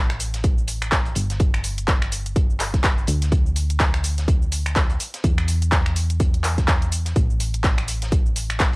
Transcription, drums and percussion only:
0.10 finger snap medium
0.10 closed hi-hat soft
0.10 shaker soft
0.20 closed hi-hat medium
0.20 open hi-hat medium
0.20 shaker medium
0.34 snare soft
0.34 closed hi-hat medium
0.34 shaker soft
0.44 kick loud
0.44 closed hi-hat medium
0.44 shaker soft
0.58 shaker soft
0.68 closed hi-hat medium
0.68 open hi-hat loud
0.68 shaker medium
0.82 finger snap medium
0.82 closed hi-hat medium
0.82 shaker soft
0.92 kick loud
0.92 snare loud
0.92 clap loud
0.92 closed hi-hat medium
0.92 shaker soft
1.05 closed hi-hat soft
1.05 shaker soft
1.15 closed hi-hat medium
1.15 open hi-hat medium
1.15 shaker medium
1.30 snare medium
1.30 closed hi-hat medium
1.30 shaker soft
1.40 kick loud
1.40 closed hi-hat medium
1.40 shaker soft
1.54 finger snap medium
1.54 shaker soft
1.64 closed hi-hat medium
1.64 open hi-hat loud
1.64 shaker medium
1.78 closed hi-hat medium
1.78 shaker soft
1.88 kick loud
1.88 snare loud
1.88 clap loud
1.88 closed hi-hat medium
1.88 shaker soft
2.02 finger snap medium
2.02 shaker soft
2.12 closed hi-hat medium
2.12 open hi-hat loud
2.12 shaker medium
2.26 closed hi-hat soft
2.26 shaker soft
2.36 kick loud
2.36 closed hi-hat medium
2.36 shaker soft
2.50 shaker soft
2.60 clap medium
2.60 closed hi-hat medium
2.60 open hi-hat loud
2.60 shaker medium
2.74 kick medium
2.74 snare soft
2.74 closed hi-hat soft
2.74 shaker soft
2.84 kick loud
2.84 snare loud
2.84 clap loud
2.84 closed hi-hat medium
2.84 shaker soft
2.98 shaker soft
3.07 closed hi-hat medium
3.07 open hi-hat medium
3.07 shaker medium
3.22 snare soft
3.22 closed hi-hat medium
3.22 shaker soft
3.32 kick loud
3.32 closed hi-hat medium
3.32 shaker soft
3.46 shaker soft
3.56 closed hi-hat medium
3.56 open hi-hat loud
3.56 shaker medium
3.70 closed hi-hat soft
3.70 shaker soft
3.80 kick loud
3.80 snare loud
3.80 clap loud
3.80 closed hi-hat medium
3.80 shaker soft
3.94 finger snap medium
3.94 closed hi-hat soft
3.94 shaker soft
4.04 closed hi-hat medium
4.04 open hi-hat medium
4.04 shaker medium
4.18 snare medium
4.18 closed hi-hat soft
4.18 shaker soft
4.28 kick loud
4.28 closed hi-hat medium
4.28 shaker soft
4.42 shaker soft
4.52 closed hi-hat medium
4.52 open hi-hat loud
4.52 shaker medium
4.66 finger snap medium
4.66 closed hi-hat soft
4.66 shaker soft
4.76 kick loud
4.76 snare loud
4.76 clap loud
4.76 closed hi-hat medium
4.76 shaker soft
4.90 closed hi-hat soft
4.90 shaker soft
5.00 closed hi-hat medium
5.00 open hi-hat medium
5.00 shaker medium
5.14 snare medium
5.14 closed hi-hat medium
5.14 shaker soft
5.24 kick loud
5.24 closed hi-hat medium
5.24 shaker soft
5.38 finger snap medium
5.38 shaker soft
5.48 closed hi-hat medium
5.48 open hi-hat loud
5.48 shaker medium
5.62 closed hi-hat soft
5.62 shaker soft
5.71 kick loud
5.71 snare loud
5.71 clap loud
5.71 closed hi-hat medium
5.71 shaker soft
5.86 finger snap medium
5.86 shaker soft
5.96 closed hi-hat medium
5.96 open hi-hat medium
5.96 shaker medium
6.10 closed hi-hat soft
6.10 shaker soft
6.20 kick loud
6.20 closed hi-hat medium
6.20 shaker soft
6.34 closed hi-hat soft
6.34 shaker soft
6.44 clap medium
6.44 closed hi-hat medium
6.44 open hi-hat loud
6.44 shaker medium
6.58 kick medium
6.58 snare soft
6.58 closed hi-hat soft
6.58 shaker soft
6.68 kick loud
6.68 snare loud
6.68 clap loud
6.68 closed hi-hat medium
6.68 shaker soft
6.82 closed hi-hat soft
6.82 shaker soft
6.92 closed hi-hat medium
6.92 open hi-hat medium
6.92 shaker medium
7.05 snare soft
7.05 closed hi-hat soft
7.05 shaker soft
7.16 kick loud
7.16 closed hi-hat medium
7.16 shaker soft
7.30 shaker soft
7.40 closed hi-hat medium
7.40 open hi-hat loud
7.40 shaker medium
7.54 closed hi-hat soft
7.54 shaker soft
7.64 kick loud
7.64 snare loud
7.64 clap loud
7.64 closed hi-hat medium
7.64 shaker soft
7.78 finger snap medium
7.78 closed hi-hat soft
7.78 shaker soft
7.88 closed hi-hat medium
7.88 open hi-hat medium
7.88 shaker medium
8.02 snare medium
8.02 closed hi-hat medium
8.02 shaker soft
8.12 kick loud
8.12 closed hi-hat medium
8.12 shaker soft
8.26 shaker soft
8.36 closed hi-hat medium
8.36 open hi-hat loud
8.36 shaker medium
8.50 finger snap medium
8.50 closed hi-hat soft
8.50 shaker soft
8.60 kick loud
8.60 snare loud
8.60 clap loud
8.60 closed hi-hat medium
8.60 shaker soft

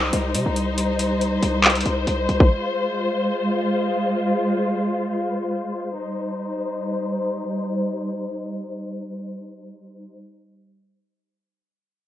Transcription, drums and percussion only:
0.13 closed hi-hat medium
0.35 closed hi-hat medium
0.56 closed hi-hat medium
0.78 closed hi-hat medium
0.99 closed hi-hat medium
1.21 closed hi-hat medium
1.43 closed hi-hat medium
1.64 clap loud
1.64 closed hi-hat soft
1.70 closed hi-hat medium
1.75 closed hi-hat medium
1.81 closed hi-hat medium
2.07 closed hi-hat medium
2.29 closed hi-hat medium
2.40 kick medium

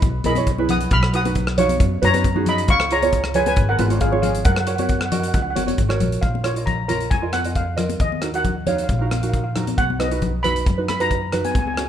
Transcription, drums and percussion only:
0.02 kick loud
0.02 closed hi-hat medium
0.24 closed hi-hat medium
0.24 high conga medium
0.35 closed hi-hat medium
0.35 high conga medium
0.47 kick medium
0.47 closed hi-hat medium
0.58 high conga medium
0.69 closed hi-hat medium
0.69 low conga medium
0.81 closed hi-hat medium
0.91 kick loud
0.91 closed hi-hat medium
1.03 cross-stick medium
1.14 closed hi-hat medium
1.25 closed hi-hat medium
1.25 high conga medium
1.35 kick medium
1.35 closed hi-hat medium
1.47 cross-stick medium
1.58 closed hi-hat medium
1.58 low conga medium
1.69 closed hi-hat medium
1.69 high conga medium
1.80 kick loud
1.80 closed hi-hat medium
2.03 closed hi-hat medium
2.03 high conga medium
2.14 closed hi-hat medium
2.14 high conga medium
2.24 kick medium
2.24 closed hi-hat medium
2.36 high conga medium
2.46 closed hi-hat medium
2.46 low conga medium
2.58 closed hi-hat medium
2.68 kick loud
2.68 closed hi-hat medium
2.80 cross-stick loud
2.91 closed hi-hat medium
3.02 closed hi-hat medium
3.02 high conga medium
3.13 kick medium
3.13 closed hi-hat medium
3.24 cross-stick medium
3.34 closed hi-hat medium
3.34 low conga medium
3.46 closed hi-hat medium
3.46 high conga medium
3.56 kick loud
3.56 closed hi-hat medium
3.79 closed hi-hat medium
3.79 high conga medium
3.90 closed hi-hat medium
3.90 high conga medium
4.01 kick medium
4.01 closed hi-hat medium
4.13 high conga medium
4.23 closed hi-hat medium
4.23 low conga medium
4.35 closed hi-hat medium
4.45 kick loud
4.45 closed hi-hat medium
4.56 cross-stick medium
4.67 closed hi-hat medium
4.78 closed hi-hat medium
4.78 high conga medium
4.89 kick medium
4.89 closed hi-hat medium
5.01 cross-stick medium
5.12 closed hi-hat medium
5.12 low conga medium
5.23 closed hi-hat medium
5.34 kick loud
5.34 closed hi-hat medium
5.56 closed hi-hat medium
5.56 high conga medium
5.68 closed hi-hat medium
5.68 high conga medium
5.78 kick medium
5.78 closed hi-hat medium
5.90 cross-stick medium
6.00 closed hi-hat medium
6.00 low conga medium
6.12 closed hi-hat medium
6.23 kick loud
6.23 closed hi-hat soft
6.35 high conga medium
6.44 cross-stick medium
6.44 closed hi-hat medium
6.56 closed hi-hat medium
6.67 kick medium
6.67 closed hi-hat soft
6.67 low conga medium
6.89 closed hi-hat medium
6.89 high conga medium
6.89 low conga medium
7.00 closed hi-hat soft
7.11 kick loud
7.11 closed hi-hat soft
7.33 cross-stick medium
7.33 closed hi-hat medium
7.33 high conga medium
7.44 closed hi-hat medium
7.55 kick medium
7.55 closed hi-hat medium
7.78 cross-stick medium
7.78 closed hi-hat medium
7.78 low conga medium
7.89 closed hi-hat medium
7.89 high conga medium
8.00 kick loud
8.00 closed hi-hat medium
8.12 high conga medium
8.22 cross-stick medium
8.22 closed hi-hat medium
8.34 closed hi-hat medium
8.44 kick medium
8.44 closed hi-hat medium
8.44 low conga medium
8.67 closed hi-hat medium
8.67 high conga medium
8.67 low conga medium
8.78 closed hi-hat medium
8.89 kick loud
8.89 closed hi-hat medium
9.11 cross-stick medium
9.11 closed hi-hat medium
9.11 high conga medium
9.23 closed hi-hat medium
9.34 kick medium
9.34 closed hi-hat medium
9.56 cross-stick medium
9.56 closed hi-hat medium
9.56 low conga medium
9.67 closed hi-hat medium
9.67 high conga medium
9.78 kick medium
9.78 closed hi-hat medium
9.90 high conga medium
10.00 cross-stick medium
10.00 closed hi-hat medium
10.11 closed hi-hat medium
10.22 kick medium
10.22 closed hi-hat soft
10.22 low conga medium
10.44 closed hi-hat medium
10.44 high conga medium
10.44 low conga medium
10.56 closed hi-hat medium
10.66 kick loud
10.66 closed hi-hat medium
10.88 cross-stick medium
10.88 closed hi-hat medium
10.88 high conga medium
11.00 closed hi-hat medium
11.11 kick medium
11.11 closed hi-hat medium
11.32 cross-stick medium
11.32 closed hi-hat medium
11.32 low conga medium
11.44 closed hi-hat medium
11.44 high conga medium
11.55 kick loud
11.55 closed hi-hat medium
11.67 high conga medium
11.77 cross-stick medium
11.77 closed hi-hat medium

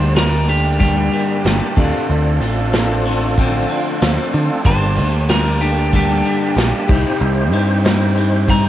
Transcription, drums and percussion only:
0.16 snare loud
0.16 ride loud
0.16 shaker medium
0.48 ride medium
0.48 shaker medium
0.80 kick medium
0.80 ride medium
0.80 shaker medium
1.12 ride medium
1.12 shaker medium
1.44 snare loud
1.44 ride medium
1.44 shaker medium
1.77 kick loud
1.77 crash loud
1.77 shaker medium
2.09 shaker loud
2.41 ride medium
2.41 shaker medium
2.73 snare loud
2.73 ride loud
2.73 shaker loud
3.05 ride medium
3.05 shaker medium
3.38 kick medium
3.38 ride loud
3.38 shaker medium
3.69 ride medium
3.69 shaker medium
4.02 snare loud
4.02 ride loud
4.02 shaker medium
4.33 ride medium
4.33 shaker medium
4.64 kick loud
4.64 ride loud
4.64 shaker loud
4.96 ride medium
4.96 shaker medium
5.28 snare loud
5.28 ride loud
5.28 shaker loud
5.60 ride medium
5.60 shaker medium
5.92 kick medium
5.92 ride loud
5.92 shaker medium
6.24 ride medium
6.24 shaker medium
6.55 snare loud
6.55 ride medium
6.55 shaker medium
6.87 kick loud
6.87 crash medium
6.87 shaker medium
7.19 shaker loud
7.52 ride medium
7.52 shaker medium
7.83 snare loud
7.83 ride medium
7.83 shaker medium
8.15 ride medium
8.15 shaker medium
8.48 kick medium
8.48 ride loud
8.48 shaker loud

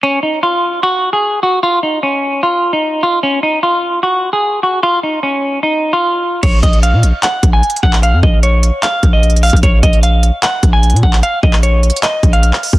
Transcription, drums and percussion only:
6.43 kick loud
6.43 closed hi-hat medium
6.43 crash loud
6.63 kick loud
6.63 closed hi-hat medium
6.73 closed hi-hat soft
6.83 closed hi-hat medium
7.03 closed hi-hat medium
7.23 clap loud
7.23 closed hi-hat medium
7.43 kick loud
7.43 closed hi-hat medium
7.63 closed hi-hat soft
7.70 closed hi-hat medium
7.76 closed hi-hat medium
7.83 kick medium
7.93 clap loud
8.03 closed hi-hat medium
8.23 kick loud
8.43 closed hi-hat medium
8.63 closed hi-hat medium
8.83 clap loud
8.83 closed hi-hat medium
9.03 kick loud
9.03 closed hi-hat medium
9.23 closed hi-hat soft
9.30 closed hi-hat soft
9.36 closed hi-hat medium
9.43 closed hi-hat medium
9.43 open hi-hat medium
9.50 kick medium
9.50 closed hi-hat medium
9.56 closed hi-hat medium
9.63 kick loud
9.63 closed hi-hat medium
9.83 kick loud
9.83 closed hi-hat medium
9.93 closed hi-hat soft
10.03 closed hi-hat medium
10.23 closed hi-hat medium
10.43 clap loud
10.43 closed hi-hat medium
10.63 kick loud
10.63 closed hi-hat medium
10.83 closed hi-hat soft
10.90 closed hi-hat medium
10.96 closed hi-hat medium
11.03 kick loud
11.13 clap loud
11.23 closed hi-hat medium
11.43 kick loud
11.53 clap medium
11.63 closed hi-hat medium
11.83 closed hi-hat medium
11.90 closed hi-hat medium
11.96 closed hi-hat medium
12.03 clap loud
12.03 closed hi-hat medium
12.23 kick medium
12.23 closed hi-hat soft
12.33 closed hi-hat medium
12.43 closed hi-hat medium
12.53 clap medium
12.63 open hi-hat medium
12.73 kick medium

